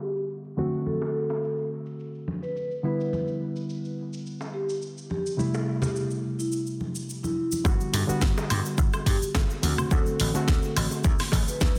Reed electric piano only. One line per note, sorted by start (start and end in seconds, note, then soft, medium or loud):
0.00 0.54 D3 medium
0.00 0.54 G3 medium
0.00 0.55 B3 medium
0.00 0.55 F#4 medium
0.57 2.81 D3 medium
0.57 2.81 A3 medium
0.57 2.81 C4 medium
0.57 2.81 F#4 medium
2.83 5.35 D3 medium
2.83 5.35 G3 medium
2.83 5.36 B3 medium
2.83 5.36 E4 medium
5.37 7.61 C3 medium
5.37 7.61 G3 medium
5.37 7.62 A3 medium
5.37 7.62 E4 medium
7.64 8.04 D3 loud
7.64 8.05 G3 medium
7.64 8.05 B3 medium
7.64 8.05 F#4 loud
8.07 9.59 D3 medium
8.07 9.60 G3 medium
8.07 9.60 B3 medium
8.07 9.60 F#4 loud
9.62 9.88 D3 medium
9.62 9.88 A3 medium
9.62 9.88 C4 medium
9.62 9.88 F#4 loud
9.91 10.31 D3 loud
9.91 10.31 A3 medium
9.91 10.31 C4 medium
9.91 10.32 F#4 loud
10.34 11.79 D3 loud
10.34 11.79 A3 medium
10.34 11.79 C4 medium
10.34 11.79 F#4 loud